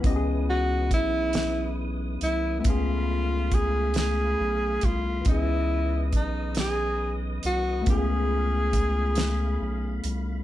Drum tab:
HH |x-xx-x|x-xx-x|x-xx-x|x-xx-x|
SD |---o--|---o--|---o--|---o--|
BD |o-o---|o-o--o|o-o---|o-o---|